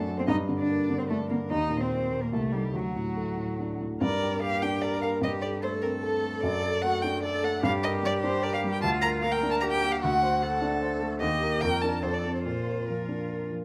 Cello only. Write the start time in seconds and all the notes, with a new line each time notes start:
0.19 C4
0.28 D#4
0.58 D4
0.98 C4
1.10 A3
1.30 A#3
1.50 D#4
1.80 C4
2.23 A#3
2.33 A3
2.52 G3
2.75 F#3
4.01 A#4
4.42 G4
4.84 A#4
5.25 G4
5.65 A4
6.84 F#4
7.24 A4
7.63 G4
8.83 F4
9.23 A#4
9.62 G4
10.03 F#4
10.43 A4
11.21 G4
11.62 A#4
12.02 A4
12.45 F4